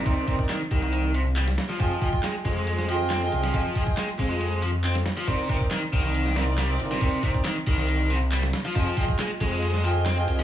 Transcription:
<<
  \new Staff \with { instrumentName = "String section" } { \time 4/4 \key c \minor \tempo 4 = 138 <c' ees' bes' d''>16 r16 <c' ees' bes' d''>16 r2. r16 | <f' aes' ees'' g''>8 <f' aes' ees'' g''>16 r4. r16 <f' aes' ees'' g''>8. <f' aes' ees'' g''>16 r8 | <f' aes' ees'' g''>16 r16 <f' aes' ees'' g''>16 r2. r16 | <c' ees' bes' d''>8 <c' ees' bes' d''>16 r4. r16 <c' ees' bes' d''>8. <c' ees' bes' d''>16 r8 |
<c' ees' bes' d''>16 r16 <c' ees' bes' d''>16 r2. r16 | <f' aes' ees'' g''>8 <f' aes' ees'' g''>16 r4. r16 <f' aes' ees'' g''>8. <f' aes' ees'' g''>16 r8 | }
  \new Staff \with { instrumentName = "Overdriven electric guitar" } { \clef bass \time 4/4 \key c \minor c8 c16 r16 ees16 r16 ees16 ees8. c16 r16 g16 r8 f16 | f8 f16 r16 aes16 r16 aes16 aes8. f16 r16 c'16 r8 f16 | f8 f16 r16 aes16 r16 aes16 aes8. f16 r16 c'16 r8 f16 | c8 c16 r16 ees16 r16 ees16 ees8. c16 r16 g16 r8 c16 |
c8 c16 r16 ees16 r16 ees16 ees8. c16 r16 g16 r8 f16 | f8 f16 r16 aes16 r16 aes16 aes8. f16 r16 c'16 r8 f16 | }
  \new Staff \with { instrumentName = "Detuned saw bass" } { \clef bass \time 4/4 \key c \minor c,8 r4 c,2 r8 | f,8 r4 f,2 c,8 | f,8 r4 f,2 r8 | c,8 r4 c,2 g,,8 |
c,8 r4 c,2 r8 | f,8 r4 f,2 c,8 | }
  \new DrumStaff \with { instrumentName = "Drums" } \drummode { \time 4/4 <bd cymr>8 <bd cymr>16 bd16 <hc cymr sn>16 cymr16 <bd cymr>16 cymr16 cymr8 cymr8 <hc cymr>16 sn16 <cymr sn>16 sn16 | <bd cymr>16 cymr16 <bd cymr>16 bd16 <hc cymr sn>8 <bd cymr>8 hho16 sn16 cymr8 <hc cymr sn>16 cymr16 cymr16 sn16 | <bd cymr>8 <bd cymr>16 bd16 <hc cymr sn>16 cymr16 <bd cymr>16 cymr16 cymr8 cymr8 <hc cymr>16 sn16 <cymr sn>16 sn16 | <bd cymr>16 cymr16 <bd cymr>16 bd16 <hc cymr sn>8 <bd cymr>8 hho16 sn16 <cymr sn>8 <hc cymr sn>16 cymr16 cymr16 sn16 |
<bd cymr>8 <bd cymr>16 bd16 <hc cymr sn>16 cymr16 <bd cymr>16 cymr16 cymr8 cymr8 <hc cymr>16 sn16 <cymr sn>16 sn16 | <bd cymr>16 cymr16 <bd cymr>16 bd16 <hc cymr sn>8 <bd cymr>8 hho16 sn16 cymr8 <hc cymr sn>16 cymr16 cymr16 sn16 | }
>>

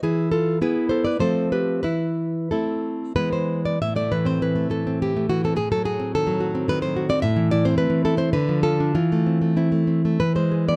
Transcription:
\new Staff \with { instrumentName = "Nylon-string guitar" } { \time 3/4 \key a \minor \tempo 4 = 101 << { <e' gis'>8 <f' a'>8 <gis' b'>8 <a' c''>16 <b' d''>16 <a' c''>8 <g' b'>8 | <e' b'>4 <e' a'>4 b'16 c''8 d''16 | e''16 d''16 b'16 c''16 b'8 a'8 g'8 fis'16 a'16 | gis'16 a'16 gis'8 a'4 b'16 c''8 d''16 |
e''8 d''16 c''16 b'8 a'16 c''16 b'8 a'8 | f'4 e'4 b'16 c''8 d''16 | } \\ { e4 <b e'>4 <f a c'>4 | e4 <a c'>4 <e gis b>4 | a,16 a16 e16 c'16 e16 a16 e16 c'16 e16 a16 e16 c'16 | a,16 fis16 fis'16 c'16 ees16 fis16 fis'16 c'16 ees16 fis16 fis'16 c'16 |
a,16 e16 e'16 c'16 a16 e16 e'16 c'16 d16 f16 f'16 d'16 | e16 a16 c'16 a16 c'16 a16 c'16 a16 e16 gis16 gis'16 b16 | } >> }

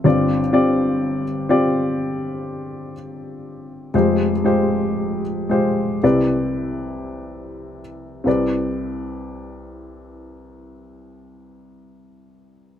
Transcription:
<<
  \new Staff \with { instrumentName = "Upright piano" } { \time 4/4 \key c \major \tempo 4 = 56 <c' f' g' d''>8 <c' f' g' d''>8. r16 <c' f' g' d''>4. r4 | <aes f' g' c''>8 <aes f' g' c''>8. r16 <aes f' g' c''>8 <c' e' b' d''>4. r8 | <c' e' b' d''>1 | }
  \new Staff \with { instrumentName = "Upright piano" } { \clef bass \time 4/4 \key c \major <g,, g,>1 | <f,, f,>2 <c, c>2 | c,1 | }
>>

